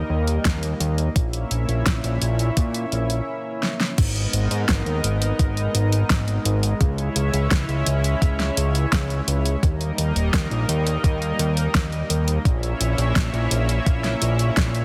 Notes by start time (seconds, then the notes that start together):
Already playing: G3 A#3 D#4 A#4 D#5
0.10 D#2
0.27 closed hi-hat
0.45 D#2, kick, snare, closed hi-hat
0.63 closed hi-hat
0.80 D#2, closed hi-hat
0.98 closed hi-hat
1.16 A#1 C#4 E4 C#5 E5, kick, closed hi-hat
1.33 closed hi-hat
1.51 A#1, closed hi-hat
1.69 A#1, closed hi-hat
1.86 A#1, kick, snare, closed hi-hat
2.04 A#1, closed hi-hat
2.22 A#1, closed hi-hat
2.39 closed hi-hat
2.57 A#2, kick, closed hi-hat
2.74 closed hi-hat
2.92 A#1, closed hi-hat
3.10 closed hi-hat
3.63 snare
3.80 snare
3.98 G#1 G#3 B3 D#4 A#4 D#5, kick, closed hi-hat, crash
4.16 closed hi-hat
4.33 G#1, closed hi-hat
4.51 G#2, closed hi-hat
4.69 G#1, kick, snare, closed hi-hat
4.86 D#2, closed hi-hat
5.04 G#1, closed hi-hat
5.22 closed hi-hat
5.39 G#1, kick, closed hi-hat
5.57 closed hi-hat
5.75 G#1, closed hi-hat
5.92 closed hi-hat
6.10 G#1, kick, snare, closed hi-hat
6.28 closed hi-hat
6.45 G#1, closed hi-hat
6.63 closed hi-hat
6.81 C#2 C#4 E4 C#5 E5, kick, closed hi-hat
6.98 closed hi-hat
7.16 C#2, closed hi-hat
7.34 C#2, closed hi-hat
7.51 C#2, kick, snare, closed hi-hat
7.69 C#2, closed hi-hat
7.86 C#2, closed hi-hat
8.04 closed hi-hat
8.22 C#2, kick, closed hi-hat
8.40 snare, closed hi-hat
8.57 C#2, closed hi-hat
8.75 closed hi-hat
8.92 C#2, kick, snare, closed hi-hat
9.10 closed hi-hat
9.28 C#2, closed hi-hat
9.46 closed hi-hat
9.63 D#2 G3 A#3 D#4 A#4 D#5, kick, closed hi-hat
9.81 closed hi-hat
9.98 D#2, closed hi-hat
10.16 D#1, closed hi-hat
10.34 D#2, kick, snare, closed hi-hat
10.51 A#1, closed hi-hat
10.69 D#2, closed hi-hat
10.87 closed hi-hat
11.04 D#2, kick, closed hi-hat
11.22 closed hi-hat
11.39 D#2, closed hi-hat
11.57 closed hi-hat
11.75 D#2, kick, snare, closed hi-hat
11.92 closed hi-hat
12.10 D#2, closed hi-hat
12.28 closed hi-hat
12.45 A#1 A#3 C#4 E4 C#5 E5, kick, closed hi-hat
12.63 closed hi-hat
12.81 A#1, closed hi-hat
12.98 A#1, closed hi-hat
13.16 A#1, kick, snare, closed hi-hat
13.33 A#1, closed hi-hat
13.51 A#1, closed hi-hat
13.69 closed hi-hat
13.86 A#1, kick, closed hi-hat
14.04 snare, closed hi-hat
14.22 A#1, closed hi-hat
14.39 closed hi-hat
14.57 A#1, kick, snare, closed hi-hat
14.75 closed hi-hat